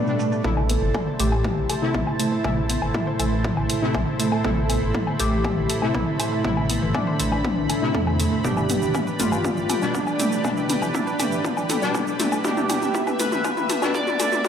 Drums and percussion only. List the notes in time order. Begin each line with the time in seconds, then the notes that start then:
0.07 shaker
0.20 shaker
0.32 shaker
0.44 kick, mid tom
0.57 low woodblock
0.70 open hi-hat
0.94 kick, mid tom, low woodblock
1.20 open hi-hat
1.32 low woodblock
1.44 kick, mid tom
1.70 open hi-hat, low woodblock
1.94 kick, mid tom
2.07 low woodblock
2.20 open hi-hat
2.44 kick, mid tom, low woodblock
2.70 open hi-hat
2.82 low woodblock
2.94 kick, mid tom
3.20 open hi-hat, low woodblock
3.44 kick, mid tom
3.57 low woodblock
3.70 open hi-hat
3.95 kick, mid tom, low woodblock
4.20 open hi-hat
4.32 low woodblock
4.45 kick, mid tom
4.70 open hi-hat, low woodblock
4.95 kick, mid tom
5.07 low woodblock
5.20 open hi-hat
5.45 kick, mid tom, low woodblock
5.70 open hi-hat
5.82 low woodblock
5.95 kick, mid tom
6.20 open hi-hat, low woodblock
6.45 kick, mid tom
6.57 low woodblock
6.70 open hi-hat
6.95 kick, mid tom, low woodblock
7.20 open hi-hat
7.32 low woodblock
7.45 kick, mid tom
7.70 open hi-hat, low woodblock
7.95 kick, mid tom
8.07 low woodblock
8.20 open hi-hat
8.45 kick, mid tom, shaker
8.57 low woodblock, shaker
8.70 open hi-hat, mid tom, shaker
8.82 shaker
8.95 kick, mid tom, low woodblock, shaker
9.07 shaker
9.20 open hi-hat, mid tom, shaker
9.32 low woodblock, shaker
9.45 kick, mid tom, shaker
9.57 shaker
9.70 open hi-hat, mid tom, low woodblock, shaker
9.82 shaker
9.95 kick, mid tom, shaker
10.07 low woodblock, shaker
10.20 open hi-hat, mid tom, shaker
10.32 shaker
10.45 kick, mid tom, low woodblock, shaker
10.57 shaker
10.70 open hi-hat, mid tom, shaker
10.82 low woodblock, shaker
10.95 kick, mid tom, shaker
11.07 shaker
11.20 open hi-hat, mid tom, low woodblock, shaker
11.32 shaker
11.45 kick, mid tom, shaker
11.57 low woodblock, shaker
11.70 open hi-hat, mid tom, shaker
11.82 shaker
11.95 kick, mid tom, low woodblock, shaker
12.07 shaker
12.20 open hi-hat, mid tom, shaker
12.32 low woodblock, shaker
12.45 kick, mid tom, shaker
12.57 mid tom, shaker
12.70 open hi-hat, mid tom, low woodblock, shaker
12.82 mid tom, shaker
12.95 kick, mid tom, shaker
13.07 mid tom, low woodblock, shaker
13.20 open hi-hat, mid tom, shaker
13.32 mid tom, shaker
13.45 kick, mid tom, low woodblock, shaker
13.57 mid tom, shaker
13.70 open hi-hat, mid tom, shaker
13.82 mid tom, low woodblock, shaker
13.95 kick, mid tom, shaker
14.07 mid tom, shaker
14.20 open hi-hat, mid tom, low woodblock, shaker
14.32 mid tom, shaker
14.45 kick, mid tom, shaker